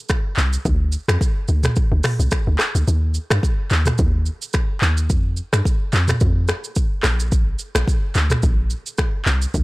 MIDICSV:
0, 0, Header, 1, 3, 480
1, 0, Start_track
1, 0, Tempo, 555556
1, 566, Time_signature, 4, 2, 24, 8
1, 8324, End_track
2, 0, Start_track
2, 0, Title_t, "Log drum bass"
2, 0, Program_c, 0, 39
2, 325, Note_on_c, 0, 36, 97
2, 498, Note_off_c, 0, 36, 0
2, 565, Note_on_c, 0, 38, 112
2, 833, Note_off_c, 0, 38, 0
2, 936, Note_on_c, 0, 41, 99
2, 1015, Note_off_c, 0, 41, 0
2, 1284, Note_on_c, 0, 38, 93
2, 1458, Note_off_c, 0, 38, 0
2, 1657, Note_on_c, 0, 38, 99
2, 1735, Note_off_c, 0, 38, 0
2, 1897, Note_on_c, 0, 36, 94
2, 1975, Note_off_c, 0, 36, 0
2, 2137, Note_on_c, 0, 38, 86
2, 2215, Note_off_c, 0, 38, 0
2, 2376, Note_on_c, 0, 38, 89
2, 2455, Note_off_c, 0, 38, 0
2, 2485, Note_on_c, 0, 39, 111
2, 2753, Note_off_c, 0, 39, 0
2, 2857, Note_on_c, 0, 43, 94
2, 2935, Note_off_c, 0, 43, 0
2, 3205, Note_on_c, 0, 39, 95
2, 3378, Note_off_c, 0, 39, 0
2, 3447, Note_on_c, 0, 39, 111
2, 3715, Note_off_c, 0, 39, 0
2, 4165, Note_on_c, 0, 39, 101
2, 4406, Note_on_c, 0, 41, 113
2, 4419, Note_off_c, 0, 39, 0
2, 4674, Note_off_c, 0, 41, 0
2, 4776, Note_on_c, 0, 43, 92
2, 4855, Note_off_c, 0, 43, 0
2, 5125, Note_on_c, 0, 41, 99
2, 5298, Note_off_c, 0, 41, 0
2, 5368, Note_on_c, 0, 41, 107
2, 5635, Note_off_c, 0, 41, 0
2, 6085, Note_on_c, 0, 34, 97
2, 6526, Note_off_c, 0, 34, 0
2, 6698, Note_on_c, 0, 34, 87
2, 6776, Note_off_c, 0, 34, 0
2, 7045, Note_on_c, 0, 38, 93
2, 7218, Note_off_c, 0, 38, 0
2, 7287, Note_on_c, 0, 34, 106
2, 7554, Note_off_c, 0, 34, 0
2, 8004, Note_on_c, 0, 36, 102
2, 8178, Note_off_c, 0, 36, 0
2, 8245, Note_on_c, 0, 38, 107
2, 8324, Note_off_c, 0, 38, 0
2, 8324, End_track
3, 0, Start_track
3, 0, Title_t, "Drums"
3, 78, Note_on_c, 9, 82, 72
3, 83, Note_on_c, 9, 37, 93
3, 85, Note_on_c, 9, 36, 93
3, 88, Note_on_c, 9, 26, 71
3, 165, Note_off_c, 9, 82, 0
3, 169, Note_off_c, 9, 37, 0
3, 171, Note_off_c, 9, 36, 0
3, 175, Note_off_c, 9, 26, 0
3, 317, Note_on_c, 9, 39, 101
3, 329, Note_on_c, 9, 82, 66
3, 403, Note_off_c, 9, 39, 0
3, 415, Note_off_c, 9, 82, 0
3, 459, Note_on_c, 9, 82, 70
3, 545, Note_off_c, 9, 82, 0
3, 565, Note_on_c, 9, 36, 113
3, 565, Note_on_c, 9, 82, 78
3, 651, Note_off_c, 9, 36, 0
3, 652, Note_off_c, 9, 82, 0
3, 797, Note_on_c, 9, 82, 63
3, 884, Note_off_c, 9, 82, 0
3, 937, Note_on_c, 9, 37, 127
3, 941, Note_on_c, 9, 82, 79
3, 943, Note_on_c, 9, 26, 106
3, 1024, Note_off_c, 9, 37, 0
3, 1028, Note_off_c, 9, 82, 0
3, 1030, Note_off_c, 9, 26, 0
3, 1045, Note_on_c, 9, 36, 102
3, 1054, Note_on_c, 9, 82, 72
3, 1131, Note_off_c, 9, 36, 0
3, 1140, Note_off_c, 9, 82, 0
3, 1279, Note_on_c, 9, 82, 59
3, 1366, Note_off_c, 9, 82, 0
3, 1412, Note_on_c, 9, 45, 97
3, 1414, Note_on_c, 9, 82, 82
3, 1424, Note_on_c, 9, 37, 94
3, 1429, Note_on_c, 9, 26, 74
3, 1498, Note_off_c, 9, 45, 0
3, 1500, Note_off_c, 9, 82, 0
3, 1510, Note_off_c, 9, 37, 0
3, 1516, Note_off_c, 9, 26, 0
3, 1520, Note_on_c, 9, 82, 75
3, 1527, Note_on_c, 9, 36, 120
3, 1607, Note_off_c, 9, 82, 0
3, 1613, Note_off_c, 9, 36, 0
3, 1759, Note_on_c, 9, 46, 55
3, 1759, Note_on_c, 9, 82, 54
3, 1764, Note_on_c, 9, 37, 103
3, 1764, Note_on_c, 9, 45, 102
3, 1769, Note_on_c, 9, 26, 83
3, 1845, Note_off_c, 9, 46, 0
3, 1845, Note_off_c, 9, 82, 0
3, 1850, Note_off_c, 9, 37, 0
3, 1850, Note_off_c, 9, 45, 0
3, 1856, Note_off_c, 9, 26, 0
3, 1900, Note_on_c, 9, 82, 74
3, 1986, Note_off_c, 9, 82, 0
3, 1998, Note_on_c, 9, 82, 77
3, 2002, Note_on_c, 9, 37, 91
3, 2005, Note_on_c, 9, 36, 88
3, 2008, Note_on_c, 9, 26, 73
3, 2084, Note_off_c, 9, 82, 0
3, 2089, Note_off_c, 9, 37, 0
3, 2091, Note_off_c, 9, 36, 0
3, 2094, Note_off_c, 9, 26, 0
3, 2237, Note_on_c, 9, 37, 99
3, 2237, Note_on_c, 9, 39, 105
3, 2243, Note_on_c, 9, 26, 79
3, 2249, Note_on_c, 9, 82, 64
3, 2324, Note_off_c, 9, 37, 0
3, 2324, Note_off_c, 9, 39, 0
3, 2329, Note_off_c, 9, 26, 0
3, 2336, Note_off_c, 9, 82, 0
3, 2379, Note_on_c, 9, 82, 70
3, 2465, Note_off_c, 9, 82, 0
3, 2487, Note_on_c, 9, 82, 78
3, 2573, Note_off_c, 9, 82, 0
3, 2717, Note_on_c, 9, 82, 57
3, 2803, Note_off_c, 9, 82, 0
3, 2856, Note_on_c, 9, 37, 127
3, 2859, Note_on_c, 9, 82, 79
3, 2861, Note_on_c, 9, 26, 105
3, 2942, Note_off_c, 9, 37, 0
3, 2946, Note_off_c, 9, 82, 0
3, 2948, Note_off_c, 9, 26, 0
3, 2965, Note_on_c, 9, 36, 104
3, 2974, Note_on_c, 9, 82, 74
3, 3051, Note_off_c, 9, 36, 0
3, 3060, Note_off_c, 9, 82, 0
3, 3199, Note_on_c, 9, 82, 60
3, 3209, Note_on_c, 9, 39, 99
3, 3285, Note_off_c, 9, 82, 0
3, 3295, Note_off_c, 9, 39, 0
3, 3332, Note_on_c, 9, 45, 92
3, 3334, Note_on_c, 9, 82, 80
3, 3344, Note_on_c, 9, 37, 93
3, 3349, Note_on_c, 9, 26, 76
3, 3418, Note_off_c, 9, 45, 0
3, 3420, Note_off_c, 9, 82, 0
3, 3430, Note_off_c, 9, 37, 0
3, 3436, Note_off_c, 9, 26, 0
3, 3440, Note_on_c, 9, 82, 74
3, 3447, Note_on_c, 9, 36, 120
3, 3527, Note_off_c, 9, 82, 0
3, 3534, Note_off_c, 9, 36, 0
3, 3679, Note_on_c, 9, 82, 55
3, 3765, Note_off_c, 9, 82, 0
3, 3819, Note_on_c, 9, 82, 72
3, 3905, Note_off_c, 9, 82, 0
3, 3917, Note_on_c, 9, 82, 76
3, 3922, Note_on_c, 9, 37, 91
3, 3925, Note_on_c, 9, 36, 94
3, 3927, Note_on_c, 9, 26, 70
3, 4004, Note_off_c, 9, 82, 0
3, 4008, Note_off_c, 9, 37, 0
3, 4011, Note_off_c, 9, 36, 0
3, 4014, Note_off_c, 9, 26, 0
3, 4156, Note_on_c, 9, 39, 102
3, 4168, Note_on_c, 9, 82, 64
3, 4243, Note_off_c, 9, 39, 0
3, 4255, Note_off_c, 9, 82, 0
3, 4298, Note_on_c, 9, 82, 71
3, 4384, Note_off_c, 9, 82, 0
3, 4405, Note_on_c, 9, 36, 117
3, 4405, Note_on_c, 9, 82, 83
3, 4492, Note_off_c, 9, 36, 0
3, 4492, Note_off_c, 9, 82, 0
3, 4637, Note_on_c, 9, 82, 60
3, 4724, Note_off_c, 9, 82, 0
3, 4776, Note_on_c, 9, 37, 127
3, 4780, Note_on_c, 9, 82, 79
3, 4782, Note_on_c, 9, 26, 107
3, 4862, Note_off_c, 9, 37, 0
3, 4866, Note_off_c, 9, 82, 0
3, 4868, Note_off_c, 9, 26, 0
3, 4885, Note_on_c, 9, 36, 106
3, 4894, Note_on_c, 9, 82, 75
3, 4972, Note_off_c, 9, 36, 0
3, 4981, Note_off_c, 9, 82, 0
3, 5120, Note_on_c, 9, 82, 64
3, 5131, Note_on_c, 9, 39, 100
3, 5207, Note_off_c, 9, 82, 0
3, 5217, Note_off_c, 9, 39, 0
3, 5252, Note_on_c, 9, 45, 91
3, 5254, Note_on_c, 9, 82, 81
3, 5264, Note_on_c, 9, 37, 92
3, 5270, Note_on_c, 9, 26, 78
3, 5339, Note_off_c, 9, 45, 0
3, 5341, Note_off_c, 9, 82, 0
3, 5350, Note_off_c, 9, 37, 0
3, 5356, Note_off_c, 9, 26, 0
3, 5361, Note_on_c, 9, 82, 75
3, 5367, Note_on_c, 9, 36, 115
3, 5448, Note_off_c, 9, 82, 0
3, 5454, Note_off_c, 9, 36, 0
3, 5599, Note_on_c, 9, 82, 55
3, 5605, Note_on_c, 9, 37, 106
3, 5610, Note_on_c, 9, 26, 79
3, 5686, Note_off_c, 9, 82, 0
3, 5691, Note_off_c, 9, 37, 0
3, 5697, Note_off_c, 9, 26, 0
3, 5739, Note_on_c, 9, 82, 74
3, 5825, Note_off_c, 9, 82, 0
3, 5838, Note_on_c, 9, 82, 79
3, 5845, Note_on_c, 9, 36, 91
3, 5924, Note_off_c, 9, 82, 0
3, 5931, Note_off_c, 9, 36, 0
3, 6076, Note_on_c, 9, 37, 107
3, 6076, Note_on_c, 9, 39, 102
3, 6082, Note_on_c, 9, 26, 81
3, 6088, Note_on_c, 9, 82, 67
3, 6162, Note_off_c, 9, 37, 0
3, 6162, Note_off_c, 9, 39, 0
3, 6168, Note_off_c, 9, 26, 0
3, 6174, Note_off_c, 9, 82, 0
3, 6219, Note_on_c, 9, 82, 72
3, 6306, Note_off_c, 9, 82, 0
3, 6325, Note_on_c, 9, 36, 117
3, 6325, Note_on_c, 9, 82, 80
3, 6412, Note_off_c, 9, 36, 0
3, 6412, Note_off_c, 9, 82, 0
3, 6557, Note_on_c, 9, 82, 62
3, 6644, Note_off_c, 9, 82, 0
3, 6696, Note_on_c, 9, 37, 127
3, 6700, Note_on_c, 9, 82, 80
3, 6702, Note_on_c, 9, 26, 111
3, 6782, Note_off_c, 9, 37, 0
3, 6786, Note_off_c, 9, 82, 0
3, 6788, Note_off_c, 9, 26, 0
3, 6804, Note_on_c, 9, 36, 103
3, 6814, Note_on_c, 9, 82, 73
3, 6891, Note_off_c, 9, 36, 0
3, 6900, Note_off_c, 9, 82, 0
3, 7040, Note_on_c, 9, 82, 65
3, 7050, Note_on_c, 9, 39, 98
3, 7126, Note_off_c, 9, 82, 0
3, 7136, Note_off_c, 9, 39, 0
3, 7172, Note_on_c, 9, 45, 92
3, 7174, Note_on_c, 9, 82, 80
3, 7184, Note_on_c, 9, 37, 92
3, 7189, Note_on_c, 9, 26, 75
3, 7259, Note_off_c, 9, 45, 0
3, 7260, Note_off_c, 9, 82, 0
3, 7270, Note_off_c, 9, 37, 0
3, 7276, Note_off_c, 9, 26, 0
3, 7281, Note_on_c, 9, 82, 75
3, 7287, Note_on_c, 9, 36, 117
3, 7367, Note_off_c, 9, 82, 0
3, 7373, Note_off_c, 9, 36, 0
3, 7519, Note_on_c, 9, 82, 54
3, 7605, Note_off_c, 9, 82, 0
3, 7659, Note_on_c, 9, 82, 73
3, 7745, Note_off_c, 9, 82, 0
3, 7758, Note_on_c, 9, 82, 74
3, 7762, Note_on_c, 9, 37, 92
3, 7764, Note_on_c, 9, 36, 88
3, 7768, Note_on_c, 9, 26, 73
3, 7845, Note_off_c, 9, 82, 0
3, 7849, Note_off_c, 9, 37, 0
3, 7851, Note_off_c, 9, 36, 0
3, 7855, Note_off_c, 9, 26, 0
3, 7996, Note_on_c, 9, 39, 105
3, 8008, Note_on_c, 9, 82, 66
3, 8083, Note_off_c, 9, 39, 0
3, 8095, Note_off_c, 9, 82, 0
3, 8138, Note_on_c, 9, 82, 68
3, 8224, Note_off_c, 9, 82, 0
3, 8245, Note_on_c, 9, 36, 120
3, 8245, Note_on_c, 9, 82, 79
3, 8324, Note_off_c, 9, 36, 0
3, 8324, Note_off_c, 9, 82, 0
3, 8324, End_track
0, 0, End_of_file